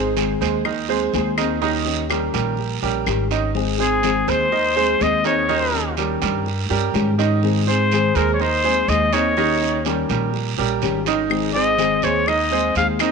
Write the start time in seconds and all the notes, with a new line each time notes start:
Already playing: G#1 G#3 C4 D#4 G#4 C5
0.15 D#3 G#3 C4 D#4 G#4, short guiro
0.41 D#2 G#3 G#4 C5, short guiro
0.64 D#3 D#4 D#5, muted nylon-string guitar stroke, long guiro, claves
0.88 G#3 C4 D#4 G#4 C5
1.13 D#2 D#3 G#3 C4 D#4 G#4, short guiro
1.37 D#3 C4 D#4 G#4 D#5, short guiro, claves
1.61 D#3 G3 C#4 D#4 G4 D#5, long guiro
1.85 G3 C#4 G4
2.09 D#3 G3 C#4 G4 A#4, short guiro, claves
2.34 A#1 G3 G4 A#4, short guiro
2.57 muted nylon-string guitar stroke, long guiro
2.82 A#1 G3 C#4 G4 A#4
3.06 G#1 D#3 G3 C#4 G4, short guiro, claves
3.30 D#3 G3 C#4 D#4 G4 D#5, short guiro
3.54 D#3 G#3 C4 D#4 G#4, long guiro
3.78 G#3 C4 D#4 G#4 C5
4.02 D#3 G#3 C4 D#4 G#4, short guiro
4.28 D#2 G#3 G#4 C5, short guiro
4.51 D#3 D#4 D#5, muted nylon-string guitar stroke, long guiro
4.75 G#3 C4 D#4 G#4 C5
4.99 D#2 D#3 G#3 C4 D#4 G#4 D#5, short guiro
5.24 D#3 C4 D#4 G#4 C#5 D#5, short guiro
5.48 D#3 G3 C#4 D#4 G4 D#5, long guiro
5.72 G3 C#4 G4
5.97 D#3 G3 C#4 G4 A#4, short guiro
6.22 G2 G3 G4 A#4, short guiro
6.46 muted nylon-string guitar stroke, long guiro
6.69 G2 G3 C#4 G4 A#4
6.93 G#2 D#3 G3 C#4 G4, short guiro
7.18 D#3 G3 C#4 D#4 G4 D#5, short guiro
7.43 D#3 G#3 C4 D#4 G#4, long guiro
7.67 G#3 C4 D#4 G#4 C5
7.92 D#3 G#3 C4 D#4 G#4, short guiro
8.15 D#2 G#3 G#4 A#4 C5, short guiro
8.34 C#5
8.40 D#3 D#4 C5 D#5, muted nylon-string guitar stroke, long guiro
8.64 G#3 C4 D#4 G#4 C5
8.87 D#2 D#3 G#3 C4 D#4 G#4 D#5, short guiro
9.12 D#3 C4 D#4 G#4 C#5 D#5, short guiro
9.36 D#3 G3 C#4 D#4 G4 D#5, long guiro
9.61 G3 C#4 G4
9.85 D#3 G3 C#4 G4 A#4, short guiro
10.09 A#1 G3 G4 A#4, short guiro
10.33 muted nylon-string guitar stroke, long guiro
10.57 A#1 G3 C#4 G4 A#4
10.81 G#1 D#3 G3 C#4 G4, short guiro
11.05 D#3 G3 C#4 D#4 G4 D#5, short guiro
11.28 D#3 G#3 C4 D#4 G#4, long guiro, claves
11.53 G#3 C4 D#4 G#4 C5 D#5
11.77 D#3 G#3 C4 D#4 G#4, short guiro
12.02 D#2 G#3 G#4 C5 C#5, short guiro
12.26 D#3 D#4 D#5, muted nylon-string guitar stroke, long guiro, claves
12.50 G#3 C4 D#4 G#4 C5
12.75 D#2 D#3 G#3 C4 D#4 G#4 F5, short guiro
12.99 D#3 C4 D#4 G#4 D#5, short guiro, claves